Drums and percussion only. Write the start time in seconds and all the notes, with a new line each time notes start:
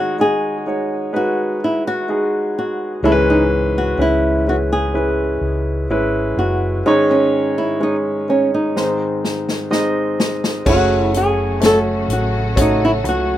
8.77 snare
9.25 snare
9.49 snare
9.72 snare
10.20 snare
10.44 snare
10.66 kick, crash
11.14 closed hi-hat
11.61 snare, closed hi-hat
12.10 closed hi-hat
12.57 kick, closed hi-hat
13.05 closed hi-hat